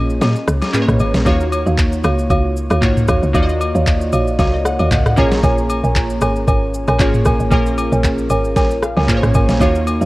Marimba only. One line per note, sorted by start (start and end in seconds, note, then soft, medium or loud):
1.26 1.63 F#4 medium
1.26 1.63 C#5 medium
1.26 1.63 F5 loud
1.66 1.77 F#4 medium
1.66 1.77 C#5 medium
1.66 1.77 F5 medium
2.04 2.17 F#4 medium
2.04 2.17 C#5 medium
2.04 2.17 F5 medium
2.30 2.43 F#4 medium
2.30 2.43 C#5 medium
2.30 2.43 F5 loud
2.70 2.81 F#4 medium
2.70 2.81 C#5 medium
2.70 2.81 F5 medium
3.08 3.21 F#4 medium
3.08 3.22 C#5 medium
3.08 3.22 F5 medium
3.34 3.71 F#4 medium
3.34 3.72 C#5 medium
3.34 3.72 F5 loud
3.75 3.86 F#4 medium
3.75 3.86 C#5 medium
3.75 3.86 F5 medium
4.13 4.26 F#4 medium
4.13 4.26 C#5 medium
4.13 4.26 F5 medium
4.39 4.52 F#4 loud
4.39 4.52 C#5 medium
4.39 4.52 F5 loud
4.79 4.90 F#4 medium
4.79 4.90 C#5 medium
4.79 4.90 F5 medium
5.17 5.30 A#4 medium
5.17 5.30 C#5 medium
5.17 5.30 G#5 medium
5.43 5.80 A#4 medium
5.43 5.80 C#5 medium
5.43 5.80 G#5 loud
5.83 5.94 A#4 medium
5.83 5.94 C#5 medium
5.83 5.95 G#5 medium
6.21 6.34 A#4 medium
6.21 6.35 C#5 medium
6.21 6.35 G#5 medium
6.47 6.61 A#4 loud
6.47 6.61 C#5 medium
6.47 6.61 G#5 loud
6.88 6.99 A#4 medium
6.88 6.99 C#5 medium
6.88 6.99 G#5 medium
7.26 7.39 A#4 medium
7.26 7.39 C#5 medium
7.26 7.39 G#5 medium
7.52 7.89 A#4 medium
7.52 7.89 C#5 medium
7.52 7.89 G#5 loud
7.92 8.03 A#4 medium
7.92 8.03 C#5 medium
7.92 8.03 G#5 medium
8.30 8.43 A#4 medium
8.30 8.43 C#5 medium
8.30 8.43 G#5 medium
8.56 8.69 A#4 loud
8.56 8.69 C#5 medium
8.56 8.70 G#5 loud
8.97 9.07 A#4 medium
8.97 9.07 C#5 medium
8.97 9.08 G#5 medium
9.34 9.47 A#4 medium
9.34 9.48 C#5 medium
9.34 9.48 G#5 medium
9.60 9.98 F#4 loud
9.60 9.98 C#5 medium
9.60 9.98 F5 loud
10.01 10.05 F#4 medium
10.01 10.05 C#5 medium
10.01 10.05 F5 medium